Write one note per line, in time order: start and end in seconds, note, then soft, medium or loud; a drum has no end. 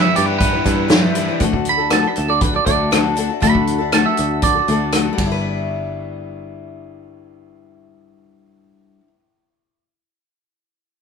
0.00 0.66 G2 medium
0.00 0.65 E3 medium
0.00 0.16 G3 medium
0.00 0.53 G3 medium
0.00 0.40 B3 medium
0.00 0.56 D4 medium
0.00 0.53 E4 medium
0.00 0.52 B4 medium
0.00 0.14 E5 medium
0.15 0.58 G2 medium
0.15 1.41 G4 medium
0.15 0.26 D5 medium
0.15 closed hi-hat medium
0.26 0.37 B4 medium
0.39 1.41 B3 medium
0.39 1.37 B4 medium
0.39 kick loud
0.39 closed hi-hat medium
0.53 0.65 D4 soft
0.53 0.65 E4 soft
0.53 0.66 B4 soft
0.64 1.28 G2 medium
0.64 1.16 E3 medium
0.64 0.87 G3 medium
0.64 0.89 D4 medium
0.64 0.89 E4 medium
0.64 0.90 B4 medium
0.64 kick medium
0.64 closed hi-hat medium
0.88 1.14 G3 medium
0.88 1.41 G3 medium
0.88 1.15 D4 medium
0.88 1.15 E4 medium
0.88 1.16 B4 medium
0.88 snare loud
0.88 closed hi-hat medium
1.15 1.42 E3 medium
1.15 1.28 G3 medium
1.15 1.29 D4 medium
1.15 1.28 E4 medium
1.15 1.27 B4 medium
1.15 closed hi-hat medium
1.28 1.40 D4 soft
1.28 1.42 E4 soft
1.28 1.41 B4 medium
1.40 2.03 D2 medium
1.40 1.79 D3 medium
1.40 1.79 A3 medium
1.40 1.79 D4 medium
1.40 1.78 F#4 medium
1.40 1.77 A4 medium
1.40 kick loud
1.40 closed hi-hat medium
1.53 kick medium
1.65 closed hi-hat medium
1.69 1.92 B5 loud
1.78 1.90 D4 soft
1.78 1.91 F#4 soft
1.78 1.91 A4 soft
1.90 2.03 D3 medium
1.90 2.03 A3 medium
1.90 2.04 D4 medium
1.90 2.04 F#4 medium
1.90 2.02 A4 medium
1.90 2.08 A5 medium
1.90 cross-stick medium
1.90 closed hi-hat medium
2.03 2.30 D4 soft
2.03 2.29 F#4 soft
2.03 2.27 A4 soft
2.08 2.17 B5 medium
2.16 2.59 D2 medium
2.16 2.29 A5 medium
2.16 closed hi-hat medium
2.28 2.56 D4 soft
2.28 2.53 F#4 soft
2.28 2.52 A4 soft
2.28 2.41 D5 medium
2.41 2.54 B4 medium
2.41 kick loud
2.41 closed hi-hat medium
2.53 2.65 D4 soft
2.53 2.67 F#4 soft
2.53 2.66 A4 soft
2.53 2.65 D5 medium
2.66 3.29 D2 medium
2.66 2.91 A3 medium
2.66 2.91 D4 medium
2.66 2.92 F#4 medium
2.66 2.93 A4 medium
2.66 2.91 D5 medium
2.66 kick medium
2.66 closed hi-hat medium
2.91 3.16 D3 medium
2.91 3.14 A3 medium
2.91 3.16 D4 medium
2.91 3.16 F#4 medium
2.91 3.17 A4 medium
2.91 cross-stick loud
2.91 closed hi-hat medium
3.16 3.29 A3 medium
3.16 3.29 D4 medium
3.16 3.29 F#4 medium
3.16 3.28 A4 medium
3.16 closed hi-hat medium
3.29 3.41 D4 soft
3.29 3.41 F#4 soft
3.29 3.42 A4 soft
3.40 4.05 D2 medium
3.40 3.79 D3 medium
3.40 3.80 A3 medium
3.40 3.80 D4 medium
3.40 3.79 F#4 medium
3.40 3.77 A4 medium
3.40 3.91 B5 medium
3.40 kick loud
3.40 closed hi-hat medium
3.55 kick medium
3.67 closed hi-hat soft
3.78 3.92 D4 soft
3.78 3.92 F#4 soft
3.78 3.92 A4 soft
3.92 4.55 D3 medium
3.92 4.55 A3 medium
3.92 4.55 D4 medium
3.92 4.56 F#4 medium
3.92 4.54 A4 medium
3.92 4.05 A5 medium
3.92 cross-stick medium
3.92 closed hi-hat medium
4.06 4.42 E5 medium
4.17 4.60 D2 medium
4.17 closed hi-hat medium
4.42 4.92 D5 medium
4.42 kick medium
4.42 closed hi-hat medium
4.55 4.67 D4 soft
4.55 4.69 F#4 soft
4.55 4.68 A4 soft
4.68 5.10 D2 medium
4.68 4.93 A3 medium
4.68 4.93 D4 medium
4.68 4.94 F#4 medium
4.68 4.94 A4 medium
4.68 closed hi-hat medium
4.92 5.19 D3 medium
4.92 5.12 A3 medium
4.92 5.19 D4 medium
4.92 5.19 F#4 medium
4.92 5.19 A4 medium
4.92 cross-stick medium
4.92 closed hi-hat medium
5.13 9.00 G3 medium
5.18 9.02 G1 medium
5.18 9.07 D4 medium
5.18 kick medium
5.18 ride medium
5.26 9.13 E4 medium
5.32 9.19 B4 medium